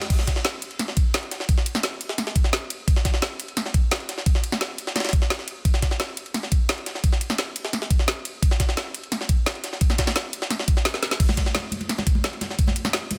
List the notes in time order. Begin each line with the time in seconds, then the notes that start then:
0.02 snare, ride
0.10 kick, closed hi-hat, crash, ride
0.19 snare
0.27 kick, snare, closed hi-hat, ride
0.36 snare
0.45 snare, closed hi-hat, ride
0.62 closed hi-hat, ride
0.71 ride
0.79 snare, closed hi-hat, ride
0.88 snare
0.97 kick, closed hi-hat, ride
1.14 snare, closed hi-hat, ride
1.23 ride
1.31 snare, closed hi-hat, ride
1.40 snare
1.49 kick, closed hi-hat, ride
1.58 snare
1.66 closed hi-hat, ride
1.75 snare
1.83 snare, closed hi-hat, ride
2.01 closed hi-hat, ride
2.09 snare
2.18 snare, closed hi-hat, ride
2.27 snare
2.35 kick, closed hi-hat, ride
2.44 snare
2.53 snare, closed hi-hat
2.70 closed hi-hat, ride
2.88 kick, closed hi-hat, ride
2.96 snare
3.05 kick, snare, closed hi-hat, ride
3.14 snare
3.22 snare, closed hi-hat, ride
3.40 closed hi-hat, ride
3.48 ride
3.57 snare, closed hi-hat, ride
3.66 snare
3.74 kick, closed hi-hat, ride
3.91 snare, closed hi-hat, ride
4.00 ride
4.09 snare, closed hi-hat, ride
4.18 snare
4.26 kick, closed hi-hat, ride
4.35 snare
4.44 closed hi-hat, ride
4.52 snare
4.61 snare, closed hi-hat, ride
4.78 closed hi-hat, ride
4.87 snare
4.96 snare, closed hi-hat, ride
5.00 snare, ride
5.05 snare, ride
5.09 snare, ride
5.13 kick, closed hi-hat, ride
5.22 snare
5.30 snare, closed hi-hat, ride
5.39 snare
5.48 closed hi-hat, ride
5.65 kick, closed hi-hat, ride
5.74 snare
5.82 kick, snare, closed hi-hat, ride
5.91 snare
6.00 snare, closed hi-hat, ride
6.17 closed hi-hat, ride
6.26 ride
6.34 snare, closed hi-hat, ride
6.43 snare
6.52 kick, closed hi-hat, ride
6.69 snare, closed hi-hat, ride
6.78 ride
6.86 snare, closed hi-hat, ride
6.95 snare
7.04 kick, closed hi-hat, ride
7.12 snare
7.21 closed hi-hat, ride
7.30 snare
7.38 snare, closed hi-hat, ride
7.56 closed hi-hat, ride
7.65 snare
7.73 snare, closed hi-hat, ride
7.82 snare
7.90 kick, closed hi-hat, ride
7.99 snare
8.08 snare, closed hi-hat
8.25 closed hi-hat, ride
8.42 kick, closed hi-hat, ride
8.51 snare
8.60 kick, snare, closed hi-hat, ride
8.69 snare
8.77 snare, closed hi-hat, ride
8.94 closed hi-hat, ride
9.03 ride
9.12 snare, closed hi-hat, ride
9.21 snare
9.29 kick, closed hi-hat, ride
9.46 snare, closed hi-hat, ride
9.55 ride
9.64 snare, closed hi-hat, ride
9.73 snare
9.81 kick, closed hi-hat, ride
9.90 snare
9.98 kick, snare, closed hi-hat, ride
10.07 snare, ride
10.16 snare, closed hi-hat, ride
10.33 closed hi-hat, ride
10.42 snare
10.50 snare, closed hi-hat, ride
10.59 snare
10.68 kick, closed hi-hat, ride
10.77 snare
10.85 snare, closed hi-hat, ride
10.94 snare
11.03 snare, closed hi-hat, ride
11.11 snare
11.20 kick, closed hi-hat, crash, ride
11.29 snare, high conga
11.37 kick, snare, closed hi-hat, ride, muted conga
11.46 snare
11.55 snare, closed hi-hat, ride, muted conga
11.72 closed hi-hat, ride, high conga
11.81 ride, muted conga
11.89 snare, closed hi-hat, ride
11.98 snare, muted conga
12.07 kick, closed hi-hat, ride
12.15 high conga
12.24 snare, closed hi-hat, ride, muted conga
12.33 ride
12.41 snare, closed hi-hat, ride, muted conga
12.50 snare
12.59 kick, closed hi-hat, ride
12.67 snare, muted conga, high conga
12.76 closed hi-hat, ride
12.85 snare, muted conga
12.93 snare, closed hi-hat, ride
13.11 closed hi-hat, ride, muted conga, high conga